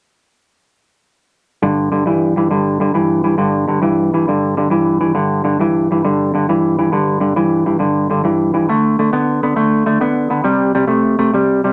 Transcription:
1.63 G2 D3
1.92 G2 D3
2.06 G2 E3
2.36 G2 E3
2.51 G2 D3
2.80 G2 D3
2.94 G2 E3
3.24 G2 E3
3.38 G2 D3
3.68 G2 D3
3.82 G2 E3
4.14 G2 E3
4.28 G2 D3
4.57 G2 D3
4.70 G2 E3
5.01 G2 E3
5.15 G2 D3
5.44 G2 D3
5.60 G2 E3
5.91 G2 E3
6.05 G2 D3
6.34 G2 D3
6.49 G2 E3
6.79 G2 E3
6.92 G2 D3
7.20 G2 D3
7.36 G2 E3
7.66 G2 E3
7.79 G2 D3
8.10 G2 D3
8.24 G2 E3
8.54 G2 E3
8.69 D3 A3
8.99 D3 A3
9.13 D3 B3
9.43 D3 B3
9.56 D3 A3
9.86 D3 A3
10.01 D3 B3
10.30 D3 B3
10.44 C3 G3
10.75 C3 G3
10.88 C3 A3
11.19 C3 A3
11.34 C3 G3
11.64 C3 G3

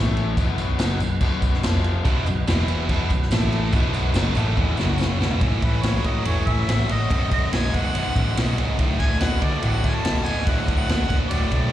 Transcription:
Already playing: A1 A2 E3 A3 E4 A4 E5
0.17 crash
0.37 B0 B1 F#2 B2 D#4 F#4 B4 F#5, kick, tambourine, crash
0.58 tambourine, crash
0.78 F#1 F#2 C#3 F#3, snare, tambourine, crash
1.00 B0 B1 F#2, tambourine, crash
1.21 B0 B1 F#2 B2, kick, crash
1.42 kick, tambourine, crash
1.54 snare
1.63 F1 F2 C3 F3 F4 C5 F5, snare, tambourine, crash
1.84 crash
2.05 B0 B1 F#2 B2 D#4 F#4 B4 F#5, kick, tambourine, crash
2.26 B0 B1 F#2, tambourine, crash
2.47 E1 E2 B2 E3 E4 B4 E5, snare, tambourine, crash
2.68 tambourine, crash
2.89 B0 B1 F#2 B2 D#4 F#4 B4 F#5, kick, crash
3.10 B0 B1 F#2, kick, tambourine, crash
3.22 snare
3.31 A1 A2 E3 A3 E4 A4 E5, snare, tambourine, crash
3.52 crash
3.73 B0 B1 F#2 B2 D#4 F#4 B4 F#5, kick, tambourine, crash
3.94 tambourine, crash
4.14 F#1 F#2 C#3 F#3, snare, tambourine, crash
4.35 A1 A2 E3 A3, tambourine, crash
4.56 E2 B2 E3, kick, high tom, tambourine
4.77 F#1 F#2 C#3 F#3 F#4 C#5 F#5, snare, tambourine
4.89 mid tom
4.98 snare, tambourine
5.20 B0 B1 F#2 B2, snare, tambourine
5.31 floor tom
5.41 A1 A2 E3, kick, ride
5.62 A1 A2 E3 B4, kick, ride
5.83 A1 A2 F#3 C#5, snare, ride
6.04 A1 A2 F#3 D#5, kick, ride
6.25 E1 A2 E3 C#5, ride
6.46 A1 A2 E3 E5, kick, ride
6.68 A1 A2 F#3, snare, ride
6.89 A1 A2 F#3 D#5, ride
7.10 B0 B1 F#2, kick, ride
7.31 B1 F#2 D#5, kick, ride
7.52 B0 B1 G#2 G#5, snare, ride
7.73 B0 B1 G#2 F#5, kick, ride
7.94 B0 B1 F#2, ride
8.15 A1 B1 F#2, kick, ride
8.37 B1 G#2, snare, ride
8.58 C#1 B1 G#2, ride
8.78 D1 D2 A2, kick, ride
8.99 D1 D2 A2 G#5, kick, ride
9.20 D1 D2 B2 F#5, snare, ride
9.41 D2 B2 D5, kick, ride
9.58 D5
9.62 A1 D2 A2 F#5, ride
9.84 D1 D2 A2, kick, ride
9.88 G#5
9.94 A5
10.03 D1 D2 B2, snare, ride
10.25 D1 D2 B2 G#5, ride
10.45 D1 D2 A2 F#5, kick, ride
10.68 D2 A2, kick, ride
10.76 F#5
10.89 D1 D2 B2, snare, ride
11.08 D1 D2 B2 F#5, kick, ride
11.29 D1 D2 A2 D5, ride
11.51 B1 D2 A2, kick, ride

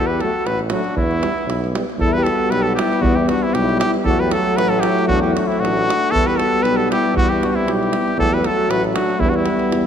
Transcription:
Already playing: E2 F#4
0.07 B4
0.11 G4
0.20 F#3 A3 F#4 A4, davul high
0.46 A1 F#4 B4, davul high
0.59 davul high
0.70 F#3 A3 F#4, davul high
0.75 D4
0.84 davul high
0.96 E2 E4, davul low
1.01 B3
1.11 davul high
1.22 G3 B3, davul high
1.38 davul high
1.47 B1, davul high
1.64 davul high
1.73 G3 B3, davul high
1.90 davul high
1.98 E2 G3 A4, davul low
2.02 B3 E4
2.13 B4
2.18 G4
2.23 A4, davul high
2.30 F#4
2.49 B1 B4, davul high
2.56 G4
2.62 A4
2.67 F#4, davul high
2.75 G4, davul high
2.80 E4
2.93 davul high
3.01 E2 F#4, davul low
3.05 B3
3.15 E4 G4
3.28 D4 F#4, davul high
3.43 C4 E4
3.53 B1 G4, davul high
3.58 E4
3.69 davul high
3.80 G4, davul high
3.85 E4
3.94 davul high
4.05 E2 F#3 A3 F#4 A4, davul low
4.20 G4 B4
4.32 F#4 A4, davul high
4.57 A1 F#4 B4, davul high
4.69 A4, davul high
4.74 F#4
4.80 G4, davul high
4.86 E4
4.99 davul high
5.07 E2 D4 F#4, davul low
5.21 E4 G4, davul high
5.33 D4 F#4, davul high
5.47 C4 E4
5.52 davul high
5.60 A1 D4 F#4
5.65 davul high
5.78 davul high
5.90 davul high
6.04 davul high
6.11 E2 G3 B3 E4 A4
6.15 davul low
6.26 G4 B4
6.37 F#4 A4, davul high
6.62 B1 G4 B4, davul high
6.77 F#4 A4, davul high
6.91 E4 G4, davul high
7.06 davul high
7.14 E2 F#4, davul low
7.20 B3
7.29 E4 G4
7.43 D4 E4 F#4 G4, davul high
7.48 D4 F#4
7.55 C4 E4
7.66 B1 E4 G4, davul high
7.83 davul high
7.93 davul high
8.08 davul high
8.17 E2 F#3 A3 F#4 A4, davul low
8.31 G4 B4
8.42 F#4 A4, davul high
8.68 A1 F#4 B4, davul high
8.84 davul high
8.95 D4 F#4, davul high
9.10 davul high
9.18 E2 G3 B3 E4, davul low
9.26 D4 F#4
9.33 B3 E4, davul high
9.46 davul high
9.59 davul high
9.70 E2, davul high

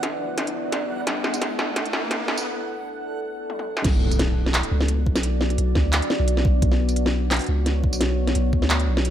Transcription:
Already playing: B3 D4 E4 D5 F#5, riser
0.03 B1, kick, snare, closed hi-hat
0.21 D2
0.38 kick, snare, closed hi-hat
0.47 closed hi-hat
0.65 B1
0.72 kick, snare, closed hi-hat
1.07 B1 A4, kick, snare, closed hi-hat
1.24 snare
1.34 closed hi-hat, tambourine
1.42 kick, snare, closed hi-hat
1.59 snare
1.76 kick, snare, closed hi-hat
1.86 closed hi-hat
1.93 C#2, snare
2.11 kick, snare, closed hi-hat
2.28 B1, snare
2.37 tambourine
3.50 high tom
3.59 high tom
3.77 snare
3.84 B1 B3 D4 F#4 D5, kick, snare, closed hi-hat, crash, impact
4.11 closed hi-hat, tambourine
4.19 snare, closed hi-hat
4.46 snare
4.54 clap, closed hi-hat
4.63 closed hi-hat
4.72 C#2
4.81 snare
4.88 closed hi-hat
5.06 B1, kick
5.16 snare, tambourine
5.23 closed hi-hat
5.41 snare
5.50 closed hi-hat
5.58 B1, closed hi-hat
5.75 D2, kick, snare
5.93 clap, closed hi-hat
6.02 closed hi-hat
6.10 snare
6.20 B1
6.28 closed hi-hat
6.37 snare
6.45 kick
6.62 B1 C#5, kick, closed hi-hat
6.72 snare
6.89 closed hi-hat, tambourine
6.96 closed hi-hat
7.06 snare
7.31 clap, snare, closed hi-hat
7.34 closed hi-hat
7.36 closed hi-hat
7.39 closed hi-hat
7.41 closed hi-hat
7.44 closed hi-hat
7.46 C#2, closed hi-hat
7.66 snare, closed hi-hat
7.83 B1, kick
7.93 tambourine
8.01 snare, closed hi-hat
8.27 snare, closed hi-hat
8.35 B1, closed hi-hat
8.53 D2, kick
8.62 snare
8.70 clap, closed hi-hat
8.80 closed hi-hat
8.88 B1
8.97 snare
9.05 closed hi-hat

